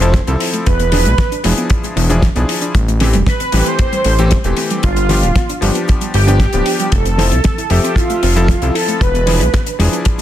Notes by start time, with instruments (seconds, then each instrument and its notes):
Already playing: analog synth bass F1, analog synth lead C5
0.01 electric grand piano F3 C4 E4 A4, synth arpeggio sound E4, closed hi-hat, cabasa
0.14 synth arpeggio sound A3, kick, snare, closed hi-hat, cabasa
0.27 analog synth bass C2, electric grand piano F3 C4 E4 A4, synth arpeggio sound C4, closed hi-hat, cabasa
0.40 synth arpeggio sound E4, open hi-hat
0.53 synth arpeggio sound A3, closed hi-hat, cabasa
0.66 analog synth bass E1, synth arpeggio sound G#3, analog synth lead B4, kick, closed hi-hat, cabasa
0.79 synth arpeggio sound B3, closed hi-hat, cabasa
0.92 electric grand piano F3 D4 E4 G#4, synth arpeggio sound D4, snare, open hi-hat
1.05 analog synth bass B1, synth arpeggio sound G#3, closed hi-hat, cabasa
1.18 synth arpeggio sound B3, kick, snare, closed hi-hat, cabasa
1.32 synth arpeggio sound D4, closed hi-hat, cabasa
1.44 analog synth bass E1, electric grand piano F3 D4 E4 G#4, synth arpeggio sound G#3, open hi-hat
1.57 synth arpeggio sound B3, closed hi-hat, cabasa
1.70 synth arpeggio sound D4, kick, closed hi-hat, cabasa
1.83 synth arpeggio sound G#3, closed hi-hat, cabasa
1.96 analog synth bass E1, synth arpeggio sound B3, open hi-hat
2.10 electric grand piano F3 D4 E4 G#4, synth arpeggio sound D4, closed hi-hat, cabasa
2.22 synth arpeggio sound E4, kick, snare, closed hi-hat, cabasa
2.36 analog synth bass B1, electric grand piano F3 D4 E4 G#4, synth arpeggio sound B3, closed hi-hat, cabasa
2.49 synth arpeggio sound E4, open hi-hat
2.62 synth arpeggio sound D4, closed hi-hat, cabasa
2.75 analog synth bass A1, synth arpeggio sound G3, kick, closed hi-hat, cabasa
2.88 synth arpeggio sound A3, closed hi-hat, cabasa
3.00 electric grand piano E3 A3 C4 G4, synth arpeggio sound C4, snare, open hi-hat
3.13 analog synth bass E1, synth arpeggio sound G3, closed hi-hat, cabasa
3.27 synth arpeggio sound A3, analog synth lead B4, kick, snare, closed hi-hat, cabasa
3.40 synth arpeggio sound C4, closed hi-hat, cabasa
3.52 analog synth bass A1, electric grand piano E3 A3 C4 G4, synth arpeggio sound G3, open hi-hat
3.66 synth arpeggio sound A3, analog synth lead C5, closed hi-hat, cabasa
3.79 synth arpeggio sound C4, analog synth lead C5, kick, closed hi-hat, cabasa
3.92 synth arpeggio sound G3, closed hi-hat, cabasa
4.04 analog synth bass A1, synth arpeggio sound A3, open hi-hat
4.18 electric grand piano E3 A3 C4 G4, synth arpeggio sound C4, closed hi-hat, cabasa
4.31 synth arpeggio sound G3, kick, snare, closed hi-hat, cabasa
4.44 analog synth bass E1, electric grand piano E3 A3 C4 G4, synth arpeggio sound A3, closed hi-hat, cabasa
4.57 synth arpeggio sound C4, open hi-hat
4.70 synth arpeggio sound G3, closed hi-hat, cabasa
4.83 analog synth bass G1, synth arpeggio sound G3, analog synth lead F4, kick, closed hi-hat, cabasa
4.96 synth arpeggio sound B3, closed hi-hat, cabasa
5.09 electric grand piano F3 B3 D4 G4, synth arpeggio sound D4, snare, open hi-hat
5.23 analog synth bass D1, synth arpeggio sound G3, closed hi-hat, cabasa
5.35 synth arpeggio sound B3, kick, snare, closed hi-hat, cabasa
5.49 synth arpeggio sound D4, closed hi-hat, cabasa
5.61 analog synth bass G1, electric grand piano F3 B3 D4 G4, synth arpeggio sound G3, open hi-hat
5.75 synth arpeggio sound B3, closed hi-hat, cabasa
5.88 synth arpeggio sound D4, kick, closed hi-hat, cabasa
6.01 synth arpeggio sound G3, closed hi-hat, cabasa
6.14 analog synth bass G1, synth arpeggio sound B3, analog synth lead G4, open hi-hat
6.27 electric grand piano F3 B3 D4 G4, synth arpeggio sound D4, closed hi-hat, cabasa
6.40 synth arpeggio sound G3, kick, snare, closed hi-hat, cabasa
6.53 analog synth bass D1, electric grand piano F3 B3 D4 G4, synth arpeggio sound B3, closed hi-hat, cabasa
6.66 synth arpeggio sound D4, open hi-hat
6.79 synth arpeggio sound G3, closed hi-hat, cabasa
6.92 analog synth bass F1, synth arpeggio sound A3, analog synth lead A4, kick, closed hi-hat, cabasa
7.05 synth arpeggio sound C4, closed hi-hat, cabasa
7.18 electric grand piano F3 C4 E4 A4, synth arpeggio sound E4, snare, open hi-hat
7.31 analog synth bass C2, synth arpeggio sound A3, closed hi-hat, cabasa
7.44 synth arpeggio sound C4, kick, snare, closed hi-hat, cabasa
7.58 synth arpeggio sound E4, closed hi-hat, cabasa
7.70 analog synth bass F1, electric grand piano F3 C4 A4 E5, synth arpeggio sound A3, analog synth lead G4, open hi-hat
7.84 synth arpeggio sound C4, closed hi-hat, cabasa
7.96 synth arpeggio sound E4, analog synth lead F4, kick, closed hi-hat, cabasa
8.10 synth arpeggio sound A3, closed hi-hat, cabasa
8.23 analog synth bass F1, synth arpeggio sound C4, open hi-hat
8.36 electric grand piano F3 C4 E4 A4, synth arpeggio sound E4, closed hi-hat, cabasa
8.48 synth arpeggio sound A3, kick, snare, closed hi-hat, cabasa
8.62 analog synth bass C2, electric grand piano F3 C4 E4 A4, synth arpeggio sound C4, closed hi-hat, cabasa
8.75 synth arpeggio sound E4, analog synth lead A4, open hi-hat
8.88 synth arpeggio sound A3, closed hi-hat, cabasa
9.01 analog synth bass E1, synth arpeggio sound G#3, analog synth lead B4, kick, closed hi-hat, cabasa
9.14 synth arpeggio sound B3, closed hi-hat, cabasa
9.27 electric grand piano F3 D4 E4 G#4, synth arpeggio sound D4, snare, open hi-hat
9.40 analog synth bass B1, synth arpeggio sound G#3, closed hi-hat, cabasa
9.53 synth arpeggio sound B3, kick, snare, closed hi-hat, cabasa
9.66 synth arpeggio sound D4, closed hi-hat, cabasa
9.79 analog synth bass E1, electric grand piano F3 D4 E4 G#4, synth arpeggio sound G#3, cross-stick, open hi-hat
9.92 synth arpeggio sound B3, closed hi-hat, cabasa
10.05 synth arpeggio sound D4, kick, closed hi-hat, cabasa
10.18 synth arpeggio sound G#3, cabasa